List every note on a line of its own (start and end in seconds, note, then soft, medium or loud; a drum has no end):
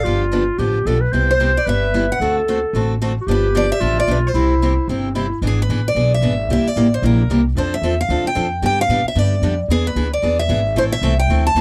0.00 0.20 F5 loud
0.04 0.48 G1 medium
0.04 0.24 D3 medium
0.04 0.24 F3 medium
0.04 0.24 B3 medium
0.04 0.24 D4 medium
0.04 0.60 F4 medium
0.04 0.24 G4 medium
0.32 0.42 D3 medium
0.32 0.42 F3 medium
0.32 0.43 B3 medium
0.32 0.43 D4 medium
0.32 0.43 G4 medium
0.58 0.82 A1 medium
0.58 0.77 D3 medium
0.58 0.77 F3 medium
0.58 0.78 B3 medium
0.58 0.78 D4 medium
0.58 0.88 G4 medium
0.58 0.78 G4 medium
0.86 1.09 B1 medium
0.86 0.97 D3 medium
0.86 0.97 F3 medium
0.86 0.97 B3 medium
0.86 0.97 D4 medium
0.86 0.97 G4 medium
0.86 1.03 A4 medium
1.01 1.14 B4 medium
1.12 1.56 C2 medium
1.12 1.31 C3 medium
1.12 1.31 G3 medium
1.12 1.32 B3 medium
1.12 1.32 E4 medium
1.12 1.32 G4 medium
1.12 1.68 C5 loud
1.31 1.57 C5 medium
1.40 1.50 C3 medium
1.40 1.50 G3 medium
1.40 1.50 B3 medium
1.40 1.50 E4 medium
1.40 1.51 G4 medium
1.57 1.68 D5 medium
1.66 2.10 G1 medium
1.66 1.85 C3 medium
1.66 1.85 G3 medium
1.66 1.85 B3 medium
1.66 1.85 E4 medium
1.66 1.85 G4 medium
1.66 2.20 B4 loud
1.66 2.11 E5 medium
1.94 2.04 C3 medium
1.94 2.04 G3 medium
1.94 2.04 B3 medium
1.94 2.04 E4 medium
1.94 2.05 G4 medium
2.12 2.35 F#5 medium
2.20 2.63 D2 medium
2.20 2.39 D3 medium
2.20 2.39 A3 medium
2.20 2.40 C4 medium
2.20 2.40 F#4 medium
2.20 2.97 A4 medium
2.20 2.40 A4 medium
2.48 2.58 D3 medium
2.48 2.58 A3 medium
2.48 2.58 C4 medium
2.48 2.58 F#4 medium
2.48 2.58 A4 medium
2.73 3.17 A1 medium
2.73 2.93 D3 medium
2.73 2.93 A3 medium
2.73 2.93 C4 medium
2.73 2.93 F#4 medium
2.73 2.93 A4 medium
3.02 3.12 D3 medium
3.02 3.12 A3 medium
3.02 3.12 C4 medium
3.02 3.12 F#4 medium
3.02 3.12 A4 medium
3.21 3.28 F#4 medium
3.26 3.70 G1 medium
3.26 3.46 D3 medium
3.26 3.47 F3 medium
3.26 3.47 B3 medium
3.26 3.47 D4 medium
3.26 3.81 G4 loud
3.26 3.47 G4 medium
3.31 3.57 B4 medium
3.55 3.65 D3 medium
3.55 3.65 F3 medium
3.55 3.65 B3 medium
3.55 3.65 D4 medium
3.55 3.65 G4 medium
3.55 3.70 D5 medium
3.72 3.98 E5 loud
3.80 4.04 A1 medium
3.80 3.99 D3 medium
3.80 4.00 F3 medium
3.80 4.00 B3 medium
3.80 4.00 D4 medium
3.80 4.33 F4 loud
3.80 4.00 G4 medium
4.00 4.10 D5 loud
4.07 4.31 B1 medium
4.07 4.18 D3 medium
4.07 4.18 F3 medium
4.07 4.18 B3 medium
4.07 4.18 D4 medium
4.07 4.19 G4 medium
4.11 4.16 B4 medium
4.27 5.17 C5 medium
4.34 4.77 C2 medium
4.34 4.53 C3 medium
4.34 4.53 G3 medium
4.34 4.53 C4 medium
4.34 4.91 E4 medium
4.34 4.54 E4 medium
4.34 4.54 G4 medium
4.62 4.72 C3 medium
4.62 4.72 G3 medium
4.62 4.73 C4 medium
4.62 4.73 E4 medium
4.62 4.73 G4 medium
4.88 5.31 G1 medium
4.88 5.07 C3 medium
4.88 5.07 G3 medium
4.88 5.14 C4 medium
4.88 5.08 C4 medium
4.88 5.08 E4 medium
4.88 5.08 G4 medium
5.15 5.26 C3 medium
5.15 5.26 G3 medium
5.15 5.26 C4 medium
5.15 5.40 E4 medium
5.15 5.26 E4 medium
5.15 5.26 G4 medium
5.42 5.68 G#1 medium
5.42 5.61 E3 medium
5.42 5.61 B3 medium
5.42 5.61 D4 medium
5.42 5.61 G#4 medium
5.47 5.59 G#4 medium
5.62 5.87 B4 medium
5.69 5.94 A1 medium
5.69 5.80 E3 medium
5.69 5.80 B3 medium
5.69 5.80 D4 medium
5.69 5.80 G#4 medium
5.88 6.14 D5 medium
5.95 6.21 B1 medium
5.95 6.14 E3 medium
5.95 6.14 B3 medium
5.95 6.14 D4 medium
5.95 6.15 G#4 medium
6.14 6.51 E5 medium
6.21 6.48 G#1 medium
6.21 6.33 E3 medium
6.21 6.33 B3 medium
6.21 6.33 D4 medium
6.21 6.33 G#4 medium
6.49 6.63 C2 medium
6.49 6.68 C3 medium
6.49 6.68 G3 medium
6.49 6.68 A#3 medium
6.49 6.68 E4 medium
6.49 6.68 G4 medium
6.53 6.67 E5 medium
6.64 6.93 D5 medium
6.64 muted upright bass stroke soft
6.76 7.02 A1 medium
6.76 6.86 C3 medium
6.76 6.86 G3 medium
6.76 6.87 A#3 medium
6.76 6.87 E4 medium
6.76 6.87 G4 medium
6.94 7.04 C5 medium
7.02 7.28 A#1 medium
7.02 7.21 C3 medium
7.02 7.21 G3 medium
7.02 7.21 A#3 medium
7.02 7.21 E4 medium
7.02 7.21 G4 medium
7.02 7.43 A#4 medium
7.29 7.55 C2 medium
7.29 7.40 C3 medium
7.29 7.40 G3 medium
7.29 7.40 A#3 medium
7.29 7.40 E4 medium
7.29 7.40 G4 medium
7.55 7.81 F2 medium
7.55 7.75 F3 medium
7.55 7.75 C4 medium
7.55 7.75 D4 medium
7.55 7.75 A4 medium
7.55 7.73 C5 medium
7.74 8.00 E5 medium
7.82 8.08 E2 medium
7.82 7.93 F3 medium
7.82 7.93 C4 medium
7.82 7.93 D4 medium
7.82 7.94 A4 medium
8.01 8.27 F5 loud
8.09 8.23 D2 medium
8.09 8.28 F3 medium
8.09 8.28 C4 medium
8.09 8.28 D4 medium
8.09 8.28 A4 medium
8.24 8.65 G5 medium
8.24 muted upright bass stroke soft
8.35 8.62 F2 medium
8.35 8.46 F3 medium
8.35 8.46 C4 medium
8.35 8.46 D4 medium
8.35 8.46 A4 medium
8.62 8.88 G2 medium
8.62 8.81 D3 medium
8.62 8.81 G3 medium
8.62 8.81 B3 medium
8.62 8.81 D4 medium
8.62 8.81 G4 medium
8.62 8.78 G5 loud
8.81 9.07 F5 loud
8.89 9.03 A2 medium
8.89 9.00 D3 medium
8.89 9.00 G3 medium
8.89 9.00 B3 medium
8.89 9.00 D4 medium
8.89 9.00 G4 medium
9.04 9.18 E5 medium
9.04 muted upright bass stroke soft
9.15 9.41 G2 medium
9.15 9.34 D3 medium
9.15 9.34 G3 medium
9.15 9.34 B3 medium
9.15 9.34 D4 medium
9.15 9.34 G4 medium
9.15 9.59 D5 medium
9.42 9.68 F2 medium
9.42 9.53 D3 medium
9.42 9.53 G3 medium
9.42 9.53 B3 medium
9.42 9.53 D4 medium
9.42 9.53 G4 medium
9.68 9.95 E2 medium
9.68 9.88 E3 medium
9.68 9.88 B3 medium
9.68 9.88 D4 medium
9.68 9.88 G#4 medium
9.68 9.86 G#4 medium
9.87 10.11 B4 loud
9.95 10.21 D2 medium
9.95 10.06 E3 medium
9.95 10.06 B3 medium
9.95 10.06 D4 medium
9.95 10.07 G#4 medium
10.13 10.39 D5 medium
10.22 10.48 E2 medium
10.22 10.41 E3 medium
10.22 10.41 B3 medium
10.22 10.41 D4 medium
10.22 10.41 G#4 medium
10.39 10.78 E5 loud
10.49 10.75 G#1 medium
10.49 10.59 E3 medium
10.49 10.60 B3 medium
10.49 10.60 D4 medium
10.49 10.60 G#4 medium
10.75 11.01 A1 medium
10.75 10.94 E3 medium
10.75 10.94 A3 medium
10.75 10.94 C4 medium
10.75 10.94 E4 medium
10.75 10.94 A4 medium
10.75 10.83 C5 loud
10.92 11.19 E5 loud
11.02 11.27 C2 medium
11.02 11.13 E3 medium
11.02 11.13 A3 medium
11.02 11.13 C4 medium
11.02 11.13 E4 medium
11.02 11.13 A4 medium
11.19 11.43 G5 loud
11.28 11.54 D2 medium
11.28 11.48 E3 medium
11.28 11.48 A3 medium
11.28 11.48 C4 medium
11.28 11.48 E4 medium
11.28 11.48 A4 medium
11.47 11.61 A5 loud
11.55 11.61 E2 medium
11.55 11.61 E3 medium
11.55 11.61 A3 medium
11.55 11.61 C4 medium
11.55 11.61 E4 medium
11.55 11.61 A4 medium